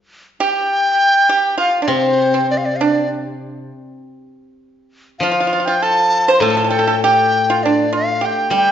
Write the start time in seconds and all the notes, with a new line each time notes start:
0.40 G4 G5
1.29 G4
1.58 F4 F5
1.82 D4 D5
1.88 C3 C4 C5
2.34 C4
2.51 D5
2.57 F5
2.65 D5
2.76 F5
2.81 D4 D5
5.19 F3 F4 F5
5.31 F4
5.40 F4
5.47 F4
5.53 F4
5.60 F4
5.65 F4 G5
5.82 A4 A5
6.28 C5
6.34 C6
6.40 A2 A4 A5
6.50 A4
6.57 A4
6.63 A4 A5
6.69 A4 G5
6.79 A4
6.87 A4
7.03 G4 G5
7.50 F4
7.63 D4 D5
7.93 F4 F5
8.21 G4
8.26 G5
8.50 G3 G4
8.57 G5